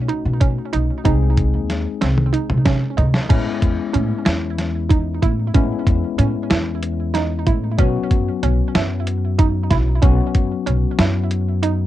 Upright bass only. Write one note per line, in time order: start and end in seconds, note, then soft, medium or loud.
0.25 0.56 B2 medium
0.74 0.89 B1 medium
1.06 1.51 C2 medium
1.54 1.84 D#2 medium
2.02 2.33 C2 medium
2.50 2.81 C3 medium
2.98 3.14 C3 medium
3.30 3.46 A2 medium
3.62 3.77 E2 medium
3.95 4.10 A2 medium
4.26 5.19 E2 medium
5.23 5.53 A2 medium
5.55 5.70 A2 medium
5.87 6.02 E2 medium
6.19 6.34 A2 medium
6.51 7.43 E2 medium
7.47 7.77 A2 medium
7.79 7.94 B1 medium
8.11 8.26 F#2 medium
8.43 8.58 B1 loud
8.75 9.67 F#2 medium
9.71 10.01 B1 medium
10.03 10.18 B1 medium
10.35 10.50 F#2 medium
10.67 10.83 B1 medium
10.99 11.87 F#2 medium